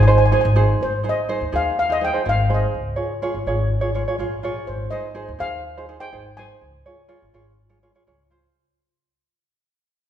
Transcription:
Already playing: G#1
0.03 G#5
0.08 D#4 G#4 C5 G#5
0.18 G#5
0.26 G#5
0.32 D#4 G#4 C5 G#5
0.41 G#1 G#5
0.56 D#4 G#4 C5
0.81 G#1 C5
1.03 D#4 G#4 C5
1.09 D#5
1.29 D#4 G#4 C5
1.41 D#2
1.52 D#2 D#4 G#4 C5 F5
1.79 F5
1.89 D#4 G#4 C5 D#5
2.01 D#4 G#4 C5 G5
2.14 D#4 G#4 C5
2.25 G#1 D#4 G#4 C5
2.29 F5
2.50 D#4 G#4 C5
2.54 D#5
2.74 C#2
2.96 F4 G#4 C#5
3.22 F4 G#4 C#5
3.34 G#1
3.47 G#1 F4 G#4 C#5
3.81 F4 G#4 C#5
3.94 F4 G#4 C#5
4.08 F4 G#4 C#5
4.18 A#1 F4 G#4 C#5
4.43 F4 G#4 C#5
4.67 G#1 C5
4.91 D#4 G#4 C5 D#5
5.14 D#4 G#4 C5
5.28 D#2
5.39 D#2 D#4 G#4 C5 F5
5.77 D#4 G#4 C5
5.89 D#4 G#4 C5
6.00 D#4 G#4 C5 G5
6.12 G#1 D#4 G#4 C5
6.37 D#4 G#4 C5 G#5
6.61 C#2
6.86 F4 G#4 C#5
7.08 F4 G#4 C#5
7.22 G#1
7.33 G#1 F4 G#4 C#5
7.69 F4 G#4 C#5
7.83 F4 G#4 C#5
7.95 F4 G#4 C#5
8.07 C#2 F4 G#4 C#5
8.30 F4 G#4 C5

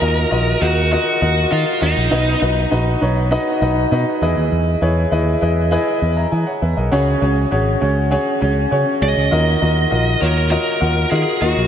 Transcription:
Already playing: D#3 F#4 A#4 D#5
0.00 D#2 F4 F#4 A#4 D#5
0.31 A#1 F4 F#4 A#4 D#5
0.61 D#2 F4 F#4 A#4 D#5
0.91 F4 F#4 A#4 D#5
1.21 D#2 F4 F#4 A#4 D#5
1.51 D#3 F4 F#4 A#4 D#5
1.81 D#2 D#4 F4 F#4 A#4 D#5
1.97 A#1
2.11 B1 B3 D#4 F#4 B4 D#5
2.41 B1 D#4 F#4 B4 D#5
2.71 A#1 D#4 F#4 B4 D#5
3.01 B1 D#4 F#4 B4 C#5
3.31 D#4 F#4 B4 D#5
3.61 B1 D#4 F#4 B4 D#5
3.91 B2 D#4 F#4 B4 D#5
4.21 E2 E3 E4 G#4 B4 D#5
4.37 D#2
4.52 E2
4.81 E2 E4 G#4 B4 C#5
5.11 D#2 E4 G#4 B4 D#5
5.41 E2 E4 G#4 B4 D#5
5.71 E4 G#4 B4 D#5
6.02 E2
6.17 E5 A#5
6.32 E3 D#5 G#5
6.47 C#5 F#5
6.62 E2 B4 E5
6.77 B1 A#4 D#5
6.92 C#2 C#3 C#4 F#4 G#4 C#5
7.21 C#2 C#4 F#4 G#4 C#5
7.51 G#1 C#4 F#4 G#4 C#5
7.81 C#2 C#4 F#4 G#4 C#5
8.11 C#4 F#4 G#4 C#5
8.41 C#2 C#4 F#4 G#4 C#5
8.71 C#3 C#4 F#4 G#4 C#5
9.01 C#2 C#4 F#4 G#4 C#5 D#5
9.17 C#2
9.31 D#2 D#3 F4 F#4 A#4 D#5
9.61 D#2 F4 F#4 A#4 D#5
9.91 A#1 F4 F#4 A#4 D#5
10.21 D#2 F4 F#4 A#4 C#5
10.50 F4 F#4 A#4 D#5
10.80 D#2 F4 F#4 A#4 F#5
11.11 D#3 F4 F#4 G#4 A#4 D#5
11.41 D#2 F4 F#4 A#4 D#5
11.57 A#1

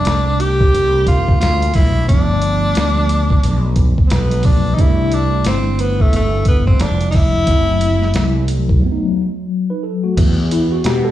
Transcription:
Already playing: G3 A3 C4 D4
0.05 C2, snare, closed hi-hat
0.40 G4, closed hi-hat
0.61 kick
0.74 C2, closed hi-hat
1.07 F4, kick, closed hi-hat
1.28 kick
1.40 D2 F4, snare, closed hi-hat
1.62 closed hi-hat
1.74 B1 E4, kick, snare, open hi-hat
2.06 G1 F3 A3 D4, kick, closed hi-hat
2.10 B3 D4
2.42 closed hi-hat
2.75 D2, snare, closed hi-hat
3.09 closed hi-hat
3.30 kick
3.43 B1, closed hi-hat
3.76 kick, closed hi-hat
3.98 kick
4.06 C4
4.10 B1 B3, snare, closed hi-hat
4.31 closed hi-hat
4.42 F3 A3 B3 D4, kick, open hi-hat
4.74 G3 A3 D#4, kick
4.78 C2 D4 E4, closed hi-hat
5.12 D4, closed hi-hat
5.45 G1 C4, snare, closed hi-hat
5.79 B3, closed hi-hat
6.00 A3, kick
6.13 G1 A3, closed hi-hat
6.45 B3, kick, closed hi-hat
6.67 C4, kick
6.80 F1 D4, snare, closed hi-hat
7.01 closed hi-hat
7.11 D#4, kick, snare, open hi-hat
7.15 E4
7.45 F#1 F#3 A3, kick, closed hi-hat
7.49 C4 E4
7.81 closed hi-hat
8.02 snare
8.14 C2, snare, closed hi-hat
8.48 closed hi-hat
8.69 kick
8.79 F#3 A3
8.84 B3 C4
8.92 D#4
9.70 D#4 B4
9.83 A4
10.04 A3 F#4
10.17 E2, kick, closed hi-hat, crash
10.51 E4, closed hi-hat
10.72 F#4
10.84 B2 G4, snare, closed hi-hat
11.05 A4

